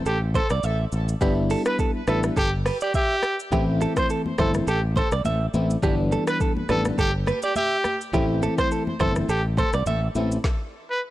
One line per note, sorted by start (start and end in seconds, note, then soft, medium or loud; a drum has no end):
0.06 0.38 A1 loud
0.06 0.20 G4 medium
0.06 0.17 A4 medium
0.06 shaker medium
0.34 0.49 A4 medium
0.34 0.46 C5 medium
0.34 kick loud
0.34 shaker medium
0.50 0.60 C2 loud
0.50 0.64 D5 medium
0.50 cross-stick loud
0.50 shaker medium
0.63 0.84 A1 loud
0.63 0.84 E5 medium
0.63 shaker medium
0.92 1.13 A1 loud
0.92 shaker medium
1.09 shaker medium
1.21 1.54 G1 loud
1.21 2.01 G3 loud
1.21 2.01 B3 medium
1.21 2.02 D4 medium
1.21 2.02 E4 loud
1.21 1.33 G4 medium
1.21 kick loud
1.21 shaker medium
1.50 1.62 A4 medium
1.50 open hi-hat medium
1.50 shaker medium
1.66 1.75 B4 medium
1.66 1.78 B4 medium
1.66 cross-stick loud
1.66 shaker medium
1.79 1.91 A4 medium
1.79 kick medium
1.79 shaker medium
2.07 2.29 A1 loud
2.07 2.34 G3 medium
2.07 2.34 B3 medium
2.07 2.35 D4 medium
2.07 2.35 E4 medium
2.07 2.22 A4 medium
2.07 2.19 B4 medium
2.07 cross-stick loud
2.07 shaker medium
2.23 cross-stick medium
2.23 shaker medium
2.36 2.69 G1 loud
2.36 2.51 G4 loud
2.36 2.48 A4 medium
2.36 kick medium
2.36 shaker medium
2.66 2.77 B4 medium
2.66 cross-stick loud
2.66 open hi-hat medium
2.66 shaker medium
2.81 2.93 G4 medium
2.81 2.91 D5 medium
2.81 shaker medium
2.94 3.37 G4 loud
2.94 3.15 E5 medium
2.94 kick medium
2.94 shaker medium
3.23 cross-stick loud
3.23 shaker soft
3.40 shaker medium
3.52 3.84 A1 loud
3.52 4.32 E3 medium
3.52 4.32 A3 medium
3.52 4.32 C4 medium
3.52 4.32 E4 loud
3.52 3.64 G4 medium
3.52 kick loud
3.52 low conga medium
3.52 shaker medium
3.81 3.92 A4 medium
3.81 high conga medium
3.81 shaker medium
3.97 4.06 C5 medium
3.97 4.08 C5 medium
3.97 kick loud
3.97 cross-stick loud
3.97 shaker medium
4.10 4.21 A4 medium
4.10 shaker medium
4.26 high conga medium
4.38 4.60 G1 medium
4.38 4.65 E3 medium
4.38 4.65 A3 medium
4.38 4.65 C4 medium
4.38 4.65 E4 medium
4.38 4.53 A4 medium
4.38 4.50 C5 medium
4.38 kick loud
4.38 cross-stick loud
4.38 high conga medium
4.38 low conga medium
4.38 shaker medium
4.54 cross-stick medium
4.54 high conga medium
4.54 shaker medium
4.67 5.00 A1 loud
4.67 4.82 G4 medium
4.67 4.79 A4 medium
4.67 shaker medium
4.96 5.10 A4 medium
4.96 5.08 C5 medium
4.96 kick loud
4.96 high conga medium
4.96 shaker medium
5.12 5.21 C2 loud
5.12 5.21 D5 medium
5.12 cross-stick loud
5.12 shaker medium
5.25 5.46 A1 loud
5.25 5.46 E5 medium
5.25 high conga medium
5.25 shaker medium
5.54 5.75 A1 loud
5.54 5.76 E3 medium
5.54 5.76 A3 medium
5.54 5.76 C4 medium
5.54 5.76 E4 medium
5.54 high conga medium
5.54 shaker soft
5.70 shaker medium
5.82 6.15 G1 loud
5.82 6.63 E3 loud
5.82 6.63 G3 medium
5.82 6.63 B3 medium
5.82 6.63 D4 loud
5.82 5.94 G4 medium
5.82 kick loud
5.82 low conga medium
5.82 shaker medium
6.12 6.23 A4 medium
6.12 high conga medium
6.12 shaker medium
6.27 6.37 B4 medium
6.27 6.39 B4 medium
6.27 cross-stick loud
6.27 shaker medium
6.41 6.52 A4 medium
6.41 kick medium
6.41 shaker medium
6.57 high conga medium
6.69 6.90 A1 loud
6.69 6.96 E3 medium
6.69 6.96 G3 medium
6.69 6.96 B3 medium
6.69 6.96 D4 medium
6.69 6.84 A4 medium
6.69 6.81 B4 medium
6.69 cross-stick medium
6.69 high conga medium
6.69 low conga medium
6.69 shaker medium
6.85 cross-stick medium
6.85 high conga medium
6.85 shaker medium
6.98 7.31 G1 loud
6.98 7.12 G4 loud
6.98 7.10 A4 medium
6.98 kick medium
6.98 shaker medium
7.27 7.39 B4 medium
7.27 cross-stick loud
7.27 high conga medium
7.27 shaker medium
7.42 7.55 G4 medium
7.42 7.52 D5 medium
7.42 shaker medium
7.56 7.98 G4 loud
7.56 7.76 E5 medium
7.56 high conga medium
7.56 shaker medium
7.84 cross-stick medium
7.84 high conga medium
7.84 shaker soft
8.01 shaker medium
8.13 8.46 A1 loud
8.13 8.94 E3 medium
8.13 8.94 A3 medium
8.13 8.94 C4 medium
8.13 8.94 E4 loud
8.13 8.25 G4 medium
8.13 kick loud
8.13 low conga medium
8.13 shaker medium
8.42 8.54 A4 medium
8.42 high conga medium
8.42 shaker medium
8.58 8.68 C5 medium
8.58 8.70 C5 medium
8.58 kick loud
8.58 cross-stick loud
8.58 shaker medium
8.71 8.83 A4 medium
8.71 shaker medium
8.87 high conga medium
9.00 9.21 G1 medium
9.00 9.27 E3 medium
9.00 9.27 A3 medium
9.00 9.27 C4 medium
9.00 9.27 E4 medium
9.00 9.14 A4 medium
9.00 9.12 C5 medium
9.00 kick loud
9.00 cross-stick loud
9.00 high conga medium
9.00 low conga medium
9.00 shaker medium
9.16 cross-stick medium
9.16 high conga medium
9.16 shaker medium
9.29 9.61 A1 loud
9.29 9.43 G4 medium
9.29 9.40 A4 medium
9.29 shaker medium
9.57 9.72 A4 medium
9.57 9.69 C5 medium
9.57 kick loud
9.57 high conga medium
9.57 shaker medium
9.73 9.83 C2 medium
9.73 9.83 D5 medium
9.73 cross-stick loud
9.73 shaker medium
9.86 10.07 A1 loud
9.86 10.07 E5 medium
9.86 high conga medium
9.86 shaker medium
10.15 10.36 A1 loud
10.15 10.38 E3 medium
10.15 10.38 A3 medium
10.15 10.38 C4 medium
10.15 10.38 E4 medium
10.15 high conga medium
10.15 shaker medium
10.32 shaker medium
10.44 kick loud
10.44 snare medium
10.90 11.01 B4 medium